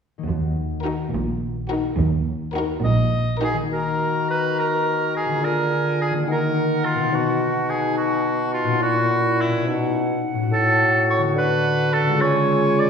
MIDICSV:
0, 0, Header, 1, 11, 480
1, 0, Start_track
1, 0, Key_signature, -6, "minor"
1, 0, Tempo, 573066
1, 227, Time_signature, 6, 3, 24, 8
1, 4547, Tempo, 565504
1, 10887, End_track
2, 0, Start_track
2, 0, Title_t, "Flute"
2, 0, Program_c, 0, 73
2, 3114, Note_on_c, 0, 82, 38
2, 4517, Note_off_c, 0, 82, 0
2, 4554, Note_on_c, 0, 80, 38
2, 5272, Note_on_c, 0, 78, 37
2, 5285, Note_off_c, 0, 80, 0
2, 8135, Note_off_c, 0, 78, 0
2, 8141, Note_on_c, 0, 78, 43
2, 10032, Note_off_c, 0, 78, 0
2, 10308, Note_on_c, 0, 80, 45
2, 10887, Note_off_c, 0, 80, 0
2, 10887, End_track
3, 0, Start_track
3, 0, Title_t, "Violin section"
3, 0, Program_c, 1, 48
3, 699, Note_on_c, 1, 70, 37
3, 881, Note_off_c, 1, 70, 0
3, 1422, Note_on_c, 1, 70, 42
3, 1597, Note_off_c, 1, 70, 0
3, 2130, Note_on_c, 1, 70, 47
3, 2311, Note_off_c, 1, 70, 0
3, 2860, Note_on_c, 1, 70, 45
3, 3043, Note_off_c, 1, 70, 0
3, 10887, End_track
4, 0, Start_track
4, 0, Title_t, "Oboe"
4, 0, Program_c, 2, 68
4, 2382, Note_on_c, 2, 75, 67
4, 2833, Note_off_c, 2, 75, 0
4, 2882, Note_on_c, 2, 68, 60
4, 2987, Note_off_c, 2, 68, 0
4, 3119, Note_on_c, 2, 70, 45
4, 3584, Note_off_c, 2, 70, 0
4, 3607, Note_on_c, 2, 71, 49
4, 3833, Note_off_c, 2, 71, 0
4, 3851, Note_on_c, 2, 70, 53
4, 4311, Note_off_c, 2, 70, 0
4, 4328, Note_on_c, 2, 68, 53
4, 4560, Note_on_c, 2, 70, 55
4, 4573, Note_off_c, 2, 68, 0
4, 5034, Note_off_c, 2, 70, 0
4, 5044, Note_on_c, 2, 68, 51
4, 5148, Note_off_c, 2, 68, 0
4, 5300, Note_on_c, 2, 70, 58
4, 5755, Note_on_c, 2, 65, 54
4, 5768, Note_off_c, 2, 70, 0
4, 6011, Note_on_c, 2, 66, 47
4, 6024, Note_off_c, 2, 65, 0
4, 6470, Note_on_c, 2, 68, 55
4, 6483, Note_off_c, 2, 66, 0
4, 6704, Note_off_c, 2, 68, 0
4, 6710, Note_on_c, 2, 66, 55
4, 7177, Note_off_c, 2, 66, 0
4, 7185, Note_on_c, 2, 65, 55
4, 7420, Note_off_c, 2, 65, 0
4, 7426, Note_on_c, 2, 66, 65
4, 7926, Note_on_c, 2, 64, 55
4, 7938, Note_off_c, 2, 66, 0
4, 8155, Note_off_c, 2, 64, 0
4, 8876, Note_on_c, 2, 69, 71
4, 9316, Note_off_c, 2, 69, 0
4, 9362, Note_on_c, 2, 73, 67
4, 9466, Note_off_c, 2, 73, 0
4, 9596, Note_on_c, 2, 71, 65
4, 10067, Note_on_c, 2, 69, 68
4, 10080, Note_off_c, 2, 71, 0
4, 10305, Note_on_c, 2, 73, 70
4, 10318, Note_off_c, 2, 69, 0
4, 10799, Note_on_c, 2, 74, 68
4, 10812, Note_off_c, 2, 73, 0
4, 10887, Note_off_c, 2, 74, 0
4, 10887, End_track
5, 0, Start_track
5, 0, Title_t, "Violin section"
5, 0, Program_c, 3, 48
5, 695, Note_on_c, 3, 66, 40
5, 879, Note_off_c, 3, 66, 0
5, 1411, Note_on_c, 3, 66, 41
5, 1591, Note_off_c, 3, 66, 0
5, 2128, Note_on_c, 3, 66, 48
5, 2310, Note_off_c, 3, 66, 0
5, 2857, Note_on_c, 3, 66, 42
5, 3041, Note_off_c, 3, 66, 0
5, 10887, End_track
6, 0, Start_track
6, 0, Title_t, "Clarinet"
6, 0, Program_c, 4, 71
6, 3104, Note_on_c, 4, 66, 40
6, 4540, Note_on_c, 4, 65, 37
6, 4553, Note_off_c, 4, 66, 0
6, 5262, Note_on_c, 4, 63, 43
6, 5275, Note_off_c, 4, 65, 0
6, 7415, Note_on_c, 4, 64, 48
6, 7428, Note_off_c, 4, 63, 0
6, 8148, Note_on_c, 4, 63, 44
6, 8161, Note_off_c, 4, 64, 0
6, 8633, Note_off_c, 4, 63, 0
6, 8870, Note_on_c, 4, 66, 50
6, 10302, Note_on_c, 4, 65, 54
6, 10315, Note_off_c, 4, 66, 0
6, 10887, Note_off_c, 4, 65, 0
6, 10887, End_track
7, 0, Start_track
7, 0, Title_t, "Viola section"
7, 0, Program_c, 5, 48
7, 711, Note_on_c, 5, 63, 38
7, 887, Note_off_c, 5, 63, 0
7, 1426, Note_on_c, 5, 63, 36
7, 1598, Note_off_c, 5, 63, 0
7, 2138, Note_on_c, 5, 63, 45
7, 2315, Note_off_c, 5, 63, 0
7, 2856, Note_on_c, 5, 63, 38
7, 3041, Note_off_c, 5, 63, 0
7, 10887, End_track
8, 0, Start_track
8, 0, Title_t, "Harp"
8, 0, Program_c, 6, 46
8, 150, Note_on_c, 6, 51, 34
8, 153, Note_on_c, 6, 58, 27
8, 157, Note_on_c, 6, 63, 29
8, 195, Note_on_c, 6, 66, 30
8, 2947, Note_off_c, 6, 51, 0
8, 2957, Note_on_c, 6, 51, 36
8, 2986, Note_off_c, 6, 58, 0
8, 2996, Note_on_c, 6, 58, 31
8, 3024, Note_off_c, 6, 63, 0
8, 3034, Note_on_c, 6, 63, 29
8, 3064, Note_off_c, 6, 66, 0
8, 3074, Note_on_c, 6, 66, 33
8, 4404, Note_on_c, 6, 50, 37
8, 4431, Note_off_c, 6, 58, 0
8, 4441, Note_on_c, 6, 58, 30
8, 4478, Note_on_c, 6, 65, 33
8, 4491, Note_off_c, 6, 51, 0
8, 4517, Note_on_c, 6, 68, 33
8, 4529, Note_off_c, 6, 63, 0
8, 4549, Note_off_c, 6, 66, 0
8, 5117, Note_on_c, 6, 51, 36
8, 5146, Note_off_c, 6, 58, 0
8, 5156, Note_on_c, 6, 58, 30
8, 5195, Note_on_c, 6, 63, 30
8, 5213, Note_off_c, 6, 50, 0
8, 5233, Note_on_c, 6, 66, 27
8, 5250, Note_off_c, 6, 65, 0
8, 5270, Note_off_c, 6, 68, 0
8, 5834, Note_on_c, 6, 47, 40
8, 5873, Note_on_c, 6, 59, 35
8, 5900, Note_off_c, 6, 63, 0
8, 5910, Note_on_c, 6, 63, 35
8, 5929, Note_off_c, 6, 51, 0
8, 5936, Note_off_c, 6, 66, 0
8, 5946, Note_on_c, 6, 66, 33
8, 5949, Note_off_c, 6, 58, 0
8, 7270, Note_on_c, 6, 46, 43
8, 7309, Note_on_c, 6, 61, 39
8, 7347, Note_on_c, 6, 64, 36
8, 7367, Note_off_c, 6, 47, 0
8, 7375, Note_off_c, 6, 66, 0
8, 7385, Note_on_c, 6, 66, 37
8, 7387, Note_off_c, 6, 59, 0
8, 7405, Note_off_c, 6, 63, 0
8, 7988, Note_on_c, 6, 47, 43
8, 8027, Note_on_c, 6, 59, 35
8, 8064, Note_on_c, 6, 63, 35
8, 8087, Note_off_c, 6, 46, 0
8, 8092, Note_off_c, 6, 66, 0
8, 8102, Note_on_c, 6, 66, 37
8, 8107, Note_off_c, 6, 61, 0
8, 8126, Note_off_c, 6, 64, 0
8, 8715, Note_on_c, 6, 45, 47
8, 8751, Note_on_c, 6, 61, 39
8, 8781, Note_off_c, 6, 66, 0
8, 8791, Note_on_c, 6, 66, 41
8, 8807, Note_off_c, 6, 47, 0
8, 8827, Note_off_c, 6, 59, 0
8, 8845, Note_off_c, 6, 63, 0
8, 9430, Note_on_c, 6, 50, 44
8, 9467, Note_on_c, 6, 59, 37
8, 9498, Note_off_c, 6, 66, 0
8, 9508, Note_on_c, 6, 66, 38
8, 9528, Note_off_c, 6, 45, 0
8, 9546, Note_off_c, 6, 61, 0
8, 10150, Note_on_c, 6, 49, 49
8, 10191, Note_on_c, 6, 56, 37
8, 10226, Note_on_c, 6, 65, 38
8, 10246, Note_off_c, 6, 50, 0
8, 10265, Note_off_c, 6, 59, 0
8, 10266, Note_on_c, 6, 68, 40
8, 10285, Note_off_c, 6, 66, 0
8, 10864, Note_off_c, 6, 49, 0
8, 10887, Note_off_c, 6, 56, 0
8, 10887, Note_off_c, 6, 65, 0
8, 10887, Note_off_c, 6, 68, 0
8, 10887, End_track
9, 0, Start_track
9, 0, Title_t, "Bassoon"
9, 0, Program_c, 7, 70
9, 3113, Note_on_c, 7, 51, 38
9, 4516, Note_off_c, 7, 51, 0
9, 4546, Note_on_c, 7, 50, 42
9, 5251, Note_off_c, 7, 50, 0
9, 5271, Note_on_c, 7, 51, 41
9, 5985, Note_on_c, 7, 47, 44
9, 5998, Note_off_c, 7, 51, 0
9, 7422, Note_on_c, 7, 46, 50
9, 7435, Note_off_c, 7, 47, 0
9, 8145, Note_on_c, 7, 47, 49
9, 8158, Note_off_c, 7, 46, 0
9, 8631, Note_off_c, 7, 47, 0
9, 8859, Note_on_c, 7, 45, 53
9, 9547, Note_off_c, 7, 45, 0
9, 9572, Note_on_c, 7, 50, 55
9, 10297, Note_on_c, 7, 49, 53
9, 10309, Note_off_c, 7, 50, 0
9, 10887, Note_off_c, 7, 49, 0
9, 10887, End_track
10, 0, Start_track
10, 0, Title_t, "Cello section"
10, 0, Program_c, 8, 48
10, 224, Note_on_c, 8, 39, 43
10, 803, Note_off_c, 8, 39, 0
10, 941, Note_on_c, 8, 46, 44
10, 1513, Note_off_c, 8, 46, 0
10, 1651, Note_on_c, 8, 39, 47
10, 2230, Note_off_c, 8, 39, 0
10, 2374, Note_on_c, 8, 46, 51
10, 2964, Note_off_c, 8, 46, 0
10, 10887, End_track
11, 0, Start_track
11, 0, Title_t, "Double bass section"
11, 0, Program_c, 10, 48
11, 222, Note_on_c, 10, 39, 45
11, 803, Note_off_c, 10, 39, 0
11, 943, Note_on_c, 10, 34, 45
11, 1514, Note_off_c, 10, 34, 0
11, 1650, Note_on_c, 10, 39, 47
11, 2230, Note_off_c, 10, 39, 0
11, 2375, Note_on_c, 10, 34, 54
11, 2965, Note_off_c, 10, 34, 0
11, 10887, End_track
0, 0, End_of_file